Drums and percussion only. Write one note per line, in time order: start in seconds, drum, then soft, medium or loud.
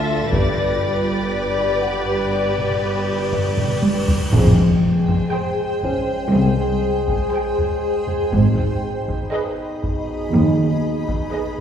0.33 taiko medium
2.58 taiko mid soft
3.32 taiko low-mid medium
3.57 taiko mid medium
3.83 taiko high medium
4.08 taiko low medium
4.33 taiko medium
4.58 taiko low soft
5.08 taiko medium
5.84 taiko medium
7.08 taiko medium
7.58 taiko low soft
8.08 taiko low soft
8.33 taiko medium
8.58 taiko low soft
9.09 taiko medium
9.83 taiko medium
11.08 taiko medium